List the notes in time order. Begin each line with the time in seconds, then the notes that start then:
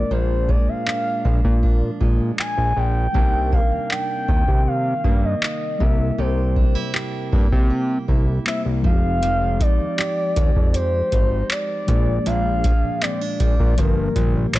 Already playing: F3 G#3 A#3 D4 F4 A#4 D5
0.11 A#1 A#2 D4 C5
0.49 G#3 D5, kick
0.68 A#1 F5
0.87 D4, clap
1.25 A#1 F3, kick
1.44 A#2, kick
1.63 D4, kick
2.01 A#2 G#3, kick
2.39 G#5, clap
2.58 A#1
2.76 A#1 G5
3.12 C2 C3 G3 A#3 C4 D4 D#4, kick
3.17 A#4
3.52 A#3 F5, kick
3.71 D#2
3.90 D4 G5, clap
4.28 D#2 D#3, kick
4.48 C3, kick
4.68 F5
5.04 G2 A#3, kick
5.24 D#5
5.43 clap
5.78 C2 C3 G3 A#3 C4 E4 E5, kick
5.82 A#4
6.18 C2 C3 G4 C5
6.56 D4, kick
6.75 G2 E4
6.94 G4, clap
7.32 G2 A#3, kick
7.52 C3, kick
7.70 G4
8.08 C2 E4, kick
8.45 G3 A#3 C4 E4 C5 E5, clap
8.65 C2
8.82 F1 F3 G#3 C4 D#4 F5, kick
8.87 F#4
8.93 G4
9.22 F3 G4, closed hi-hat
9.60 D#4 D5, kick, closed hi-hat
9.80 D#2
9.98 G4, clap, closed hi-hat
10.36 D#2 G#3, kick, closed hi-hat
10.56 F2, kick
10.74 G4 C5, closed hi-hat
11.12 G#1 D#4, kick, closed hi-hat
11.50 D5, clap, closed hi-hat
11.86 A#1 A#2 F3 G#3 A#3 D4, kick, closed hi-hat
11.90 G#4
12.26 A#1 A#2 D4 F5, closed hi-hat
12.64 G#3, kick, closed hi-hat
12.84 A#1
13.02 C4 D5, clap, closed hi-hat
13.21 D4
13.40 A#1 F3 D5, kick, closed hi-hat
13.60 A#2, kick
13.76 G1 G2 D3 F3 G3 A#3 A#4, kick, closed hi-hat
13.80 G4
14.16 A#1 A#3, kick, closed hi-hat
14.54 A#1 D5, clap, closed hi-hat